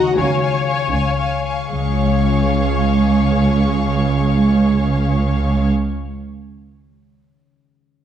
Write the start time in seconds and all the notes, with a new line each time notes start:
Already playing: D#3 F#3 D#4 F#4 A#4 D#5 F#5 A#5
0.00 C#3
0.04 G#3
0.09 F4
0.13 C#5 F5 G#5
0.17 C#2 C#5 C#6
0.41 F5 G#5 C#6
0.65 F5 G#5 C#6
0.91 C#2 F5 G#5 C#6
1.17 F5 G#5 C#6
1.44 F5 G#5 C#6
1.71 C#2 C#3 G#4 C#5 F5 C#6
1.78 G#3
1.85 C#4
1.92 F4
1.99 C#5
2.06 F5